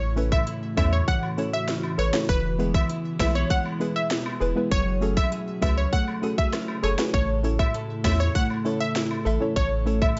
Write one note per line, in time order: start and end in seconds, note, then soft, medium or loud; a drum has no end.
0.00 0.34 A1 loud
0.00 2.29 A2 medium
0.00 2.25 C#3 medium
0.00 1.07 E3 medium
0.00 2.25 E3 medium
0.00 2.25 A3 medium
0.00 0.16 C#4 medium
0.00 0.47 E4 medium
0.00 2.27 F#4 medium
0.00 0.12 C#5 loud
0.16 0.29 A3 medium
0.16 0.29 C#4 medium
0.16 0.76 C#4 medium
0.16 0.29 E4 medium
0.16 0.29 A4 medium
0.16 0.29 B4 medium
0.16 cabasa medium
0.32 0.45 E5 medium
0.32 kick loud
0.32 high woodblock medium
0.47 1.38 E4 medium
0.47 closed hi-hat medium
0.77 1.02 E2 loud
0.77 0.89 A3 medium
0.77 0.89 C#4 medium
0.77 1.67 C#4 medium
0.77 0.90 E4 medium
0.77 0.90 A4 medium
0.77 0.90 C#5 medium
0.77 0.90 E5 medium
0.77 kick loud
0.77 cabasa medium
0.77 high woodblock medium
0.93 1.05 C#5 medium
1.08 2.29 E3 medium
1.08 1.20 F#5 medium
1.08 kick loud
1.08 closed hi-hat medium
1.23 high woodblock medium
1.37 1.50 A3 medium
1.37 1.50 C#4 medium
1.37 1.98 E4 medium
1.37 1.50 E4 medium
1.37 1.50 A4 medium
1.37 1.51 C#5 medium
1.37 cabasa medium
1.53 1.66 E5 medium
1.68 2.35 C#4 medium
1.68 snare medium
1.68 closed hi-hat medium
1.83 high woodblock medium
1.98 2.11 A1 medium
1.98 2.29 E4 medium
1.98 2.04 A4 medium
1.98 2.05 B4 medium
1.98 2.11 C#5 medium
1.98 cabasa medium
2.13 2.25 A3 medium
2.13 2.26 C#4 medium
2.13 2.26 E4 medium
2.13 2.26 A4 medium
2.13 2.26 C#5 medium
2.13 snare loud
2.29 2.77 E1 loud
2.29 4.69 B2 medium
2.29 4.71 E3 medium
2.29 4.69 E3 medium
2.29 4.69 E4 medium
2.29 2.88 E4 medium
2.29 7.10 G#4 medium
2.29 2.54 B4 loud
2.29 kick loud
2.29 closed hi-hat medium
2.58 2.71 G#3 medium
2.58 2.71 B3 medium
2.58 3.20 B3 medium
2.58 2.71 E4 medium
2.58 2.72 G#4 medium
2.58 2.72 B4 medium
2.58 cabasa medium
2.74 2.87 E5 medium
2.74 kick loud
2.74 high woodblock medium
2.90 3.79 E4 medium
2.90 closed hi-hat medium
3.19 3.44 B1 loud
3.19 3.32 G#3 medium
3.19 3.35 A3 medium
3.19 3.32 B3 medium
3.19 3.32 E4 medium
3.19 3.32 G#4 medium
3.19 3.32 B4 medium
3.19 3.33 E5 medium
3.19 kick loud
3.19 snare loud
3.19 cabasa medium
3.19 high woodblock medium
3.35 4.10 B3 medium
3.35 3.48 C#5 medium
3.50 5.92 G#3 medium
3.50 3.63 F#5 medium
3.50 kick loud
3.50 closed hi-hat medium
3.66 high woodblock medium
3.80 3.92 G#3 medium
3.80 3.92 B3 medium
3.80 3.93 E4 medium
3.80 4.40 E4 medium
3.80 3.93 G#4 medium
3.80 3.93 B4 medium
3.80 cabasa medium
3.96 4.08 E5 medium
4.11 4.78 B3 medium
4.11 snare loud
4.11 closed hi-hat medium
4.26 high woodblock medium
4.40 4.53 E1 loud
4.40 4.72 E4 medium
4.40 4.47 G#4 medium
4.40 4.48 B4 loud
4.40 cabasa medium
4.55 4.68 G#3 medium
4.55 4.68 B3 medium
4.55 4.68 E4 medium
4.55 4.69 G#4 medium
4.55 4.69 B4 medium
4.71 5.19 F#1 loud
4.71 10.20 C#3 medium
4.71 7.14 F#3 medium
4.71 10.20 A3 medium
4.71 7.11 F#4 medium
4.71 5.31 G#4 medium
4.71 4.97 C#5 loud
4.71 kick loud
4.71 closed hi-hat medium
5.01 5.13 A3 medium
5.01 5.14 C#4 medium
5.01 5.62 C#4 medium
5.01 5.14 F#4 medium
5.01 5.14 G#4 medium
5.01 5.14 A4 medium
5.01 cabasa medium
5.17 5.29 E5 medium
5.17 kick loud
5.17 high woodblock medium
5.32 6.22 G#4 medium
5.32 closed hi-hat medium
5.62 5.86 C#2 loud
5.62 5.74 A3 medium
5.62 5.74 C#4 medium
5.62 6.53 C#4 medium
5.62 5.75 F#4 medium
5.62 5.75 G#4 medium
5.62 5.75 B4 medium
5.62 5.75 E5 medium
5.62 kick loud
5.62 cabasa medium
5.62 high woodblock medium
5.77 5.90 C#5 medium
5.93 8.35 A3 medium
5.93 6.05 F#5 medium
5.93 kick loud
5.93 closed hi-hat medium
6.08 high woodblock medium
6.22 6.35 A3 medium
6.22 6.35 C#4 medium
6.22 6.35 F#4 medium
6.22 6.82 G#4 medium
6.22 6.35 G#4 medium
6.22 6.35 A4 medium
6.22 cabasa medium
6.38 6.51 E5 medium
6.38 kick medium
6.53 10.03 C#4 medium
6.53 cross-stick loud
6.53 snare medium
6.53 closed hi-hat medium
6.68 high woodblock medium
6.83 6.96 F#1 loud
6.83 6.89 G#4 medium
6.83 7.20 G#4 medium
6.83 6.90 A4 medium
6.83 6.96 C#5 medium
6.83 cabasa medium
6.98 7.10 A3 medium
6.98 7.11 C#4 medium
6.98 7.11 F#4 medium
6.98 7.11 G#4 medium
6.98 7.11 B4 medium
6.98 snare loud
7.14 7.62 A1 loud
7.14 9.55 A2 medium
7.14 10.20 E3 medium
7.14 9.54 E4 medium
7.14 7.73 A4 medium
7.14 7.39 C#5 loud
7.14 kick loud
7.14 closed hi-hat medium
7.43 7.56 A3 medium
7.43 7.56 C#4 medium
7.43 7.56 E4 medium
7.43 8.04 E4 medium
7.43 7.56 A4 medium
7.43 7.57 C#5 medium
7.43 cabasa medium
7.59 7.72 E5 medium
7.59 kick loud
7.59 high woodblock medium
7.74 8.64 A4 medium
7.74 closed hi-hat medium
8.04 8.29 E2 loud
8.04 8.16 A3 medium
8.04 8.17 C#4 medium
8.04 8.17 E4 medium
8.04 8.95 E4 medium
8.04 8.17 A4 medium
8.04 8.17 C#5 medium
8.04 8.17 E5 medium
8.04 kick medium
8.04 snare loud
8.04 cabasa medium
8.04 high woodblock medium
8.20 8.33 C#5 medium
8.35 10.20 A3 medium
8.35 8.48 F#5 medium
8.35 kick loud
8.35 closed hi-hat medium
8.50 high woodblock medium
8.64 8.77 A3 medium
8.64 8.77 C#4 medium
8.64 8.77 E4 medium
8.64 9.25 A4 medium
8.64 8.78 A4 medium
8.64 8.78 C#5 medium
8.64 cabasa medium
8.80 8.93 E5 medium
8.96 9.86 E4 medium
8.96 snare loud
8.96 closed hi-hat medium
9.11 high woodblock medium
9.25 9.38 A1 medium
9.25 9.32 A4 medium
9.25 9.56 A4 medium
9.25 9.32 E5 loud
9.25 cabasa medium
9.40 9.53 A3 medium
9.40 9.53 C#4 medium
9.40 9.53 E4 medium
9.40 9.53 A4 medium
9.40 9.54 C#5 medium
9.56 10.04 A1 loud
9.56 10.20 A2 medium
9.56 10.20 F#4 medium
9.56 10.16 A4 medium
9.56 9.81 C#5 loud
9.56 kick loud
9.56 closed hi-hat medium
9.86 9.98 A3 medium
9.86 9.98 C#4 medium
9.86 9.99 E4 medium
9.86 10.20 E4 medium
9.86 9.99 A4 medium
9.86 9.99 C#5 medium
9.86 cabasa medium
10.02 10.14 E5 medium
10.02 kick loud
10.02 high woodblock medium